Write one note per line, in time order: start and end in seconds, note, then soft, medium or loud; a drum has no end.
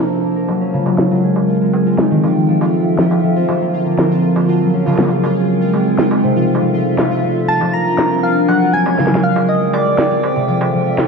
0.00 0.23 A#3 medium
0.00 0.48 A#3 medium
0.00 0.48 D4 medium
0.00 11.08 F4 medium
0.00 0.36 A#4 medium
0.00 0.48 C5 medium
0.00 0.48 A5 medium
0.11 closed hi-hat soft
0.24 3.45 A#3 medium
0.36 2.48 A#4 medium
0.36 closed hi-hat soft
0.48 0.78 F#3 medium
0.48 1.23 F#3 medium
0.48 2.22 G#3 medium
0.48 1.23 F4 medium
0.48 2.22 A#4 medium
0.48 closed hi-hat medium
0.48 struck metal soft
0.61 3.42 C#4 medium
0.61 closed hi-hat soft
0.73 1.28 C#3 medium
0.86 1.10 F#3 medium
0.86 struck metal medium
0.98 snare loud
0.98 closed hi-hat medium
1.11 1.28 F#3 medium
1.23 2.22 C4 medium
1.23 1.73 G#4 medium
1.23 3.46 G5 medium
1.36 struck metal soft
1.48 closed hi-hat medium
1.61 1.85 G#3 medium
1.73 4.01 G#4 medium
1.73 closed hi-hat medium
1.73 struck metal medium
1.86 2.16 G#3 medium
1.98 4.69 D#4 medium
1.98 snare loud
1.98 closed hi-hat medium
2.11 2.28 D#3 medium
2.19 closed hi-hat soft
2.23 2.47 F3 medium
2.23 3.47 F3 medium
2.23 3.47 A4 medium
2.23 3.47 E5 medium
2.23 struck metal soft
2.28 closed hi-hat soft
2.36 closed hi-hat medium
2.49 2.97 F3 medium
2.49 closed hi-hat medium
2.61 3.11 F4 medium
2.61 closed hi-hat soft
2.61 struck metal medium
2.98 3.22 F3 medium
2.98 snare loud
2.98 closed hi-hat medium
3.11 4.55 F4 medium
3.11 struck metal soft
3.24 3.47 F3 medium
3.36 4.80 C4 medium
3.48 4.47 D3 medium
3.48 4.53 F3 medium
3.48 4.47 C4 medium
3.48 4.47 A#4 medium
3.48 4.47 A5 medium
3.48 closed hi-hat medium
3.48 struck metal medium
3.61 3.86 A#3 medium
3.61 closed hi-hat soft
3.86 4.36 A#3 medium
3.98 6.11 A#4 medium
3.98 snare loud
3.98 closed hi-hat medium
3.98 struck metal soft
4.11 closed hi-hat soft
4.36 7.29 A#3 medium
4.36 closed hi-hat medium
4.36 struck metal medium
4.48 5.23 F#3 medium
4.48 6.42 F#4 medium
4.48 5.23 G#4 medium
4.48 5.22 A#4 medium
4.48 5.23 F5 medium
4.48 closed hi-hat medium
4.61 4.91 F#3 medium
4.61 closed hi-hat soft
4.64 closed hi-hat soft
4.67 closed hi-hat soft
4.70 closed hi-hat soft
4.74 6.30 C#4 medium
4.74 closed hi-hat soft
4.77 closed hi-hat soft
4.80 closed hi-hat soft
4.83 5.28 C#3 medium
4.83 closed hi-hat soft
4.83 struck metal soft
4.89 struck metal soft
4.92 struck metal soft
4.95 5.28 F#3 medium
4.95 snare loud
4.95 closed hi-hat medium
4.95 struck metal soft
4.99 struck metal soft
5.02 struck metal soft
5.05 struck metal soft
5.08 struck metal soft
5.23 6.22 G#3 medium
5.23 5.72 G#3 medium
5.23 6.22 C4 medium
5.23 6.22 A#4 medium
5.23 6.22 G5 medium
5.23 struck metal medium
5.36 5.86 G#4 medium
5.48 closed hi-hat medium
5.61 closed hi-hat soft
5.73 5.97 G#3 medium
5.73 struck metal soft
5.86 7.29 G#4 medium
5.99 6.28 G#3 medium
5.99 snare loud
5.99 closed hi-hat soft
6.01 closed hi-hat soft
6.03 closed hi-hat soft
6.06 closed hi-hat medium
6.08 8.81 D#4 medium
6.08 closed hi-hat medium
6.08 struck metal medium
6.24 7.53 C3 medium
6.24 7.47 G3 medium
6.24 7.47 F4 medium
6.24 7.47 A4 medium
6.24 7.47 E5 medium
6.36 6.60 F3 medium
6.36 closed hi-hat soft
6.55 struck metal soft
6.61 6.72 F3 medium
6.61 closed hi-hat soft
6.74 7.53 F3 medium
6.98 7.11 F4 medium
6.98 snare loud
6.98 closed hi-hat medium
6.98 struck metal medium
7.11 7.48 F4 medium
7.23 7.79 A3 medium
7.48 8.47 C4 medium
7.48 8.47 D4 medium
7.48 8.54 F4 medium
7.48 10.21 A#4 medium
7.48 7.75 A5 loud
7.48 closed hi-hat medium
7.61 8.53 F3 medium
7.61 closed hi-hat soft
7.61 struck metal soft
7.73 7.98 A#3 medium
7.73 8.25 A#5 loud
7.98 11.08 A#3 medium
7.98 snare loud
7.98 closed hi-hat medium
7.98 struck metal medium
8.11 10.23 A#4 medium
8.11 closed hi-hat soft
8.23 8.48 F5 loud
8.36 closed hi-hat soft
8.48 8.72 F#3 medium
8.48 9.23 F#3 medium
8.48 10.22 G#3 medium
8.48 9.23 F5 medium
8.48 8.75 F#5 loud
8.48 closed hi-hat medium
8.48 struck metal soft
8.61 10.55 F#4 medium
8.61 closed hi-hat soft
8.73 9.03 F#3 medium
8.73 9.25 G#5 loud
8.86 10.30 C#4 medium
8.86 struck metal medium
8.98 9.28 C#3 medium
8.98 snare medium
8.98 closed hi-hat medium
9.07 snare medium
9.11 9.28 F#3 medium
9.15 snare medium
9.23 10.23 C4 medium
9.23 9.48 F5 medium
9.23 11.08 G5 medium
9.36 9.85 G#3 medium
9.36 struck metal soft
9.48 9.98 G#4 medium
9.48 9.72 D#5 loud
9.48 closed hi-hat medium
9.55 closed hi-hat soft
9.73 11.08 D5 medium
9.73 struck metal medium
9.86 10.10 G#3 medium
9.98 11.08 G#4 medium
9.98 snare loud
9.98 closed hi-hat medium
10.11 10.28 G#3 medium
10.11 closed hi-hat soft
10.23 11.08 F3 medium
10.23 11.08 C4 medium
10.23 11.08 A4 medium
10.23 11.08 E5 medium
10.23 struck metal soft
10.36 11.08 C3 medium
10.36 closed hi-hat soft
10.48 10.72 F3 medium
10.48 closed hi-hat medium
10.61 closed hi-hat soft
10.61 struck metal medium
10.74 11.08 F3 medium
10.86 11.08 F4 medium
10.98 snare loud